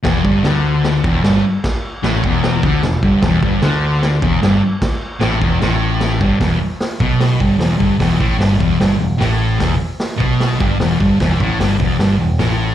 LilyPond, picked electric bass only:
\new Staff \with { instrumentName = "Picked electric bass" } { \clef bass \time 4/4 \key e \minor \tempo 4 = 151 e,,8 g,,8 d,4. e,,8 g,,8 r8 | r4 a,,8 e,,4 d,8 e,,8 g,,8 | e,,8 g,,8 d,4. e,,8 g,,8 r8 | r4 a,,8 e,,8 a,,4. g,,8 |
e,,8 r4 b,,4 g,,8 e,,8 g,,8 | e,,8 a,,8 g,,8 e,,8 g,,8 e,,8 a,,4 | e,,8 r4 b,,4 g,,8 e,,8 g,,8 | e,,8 a,,8 g,,8 e,,8 g,,8 e,,8 a,,4 | }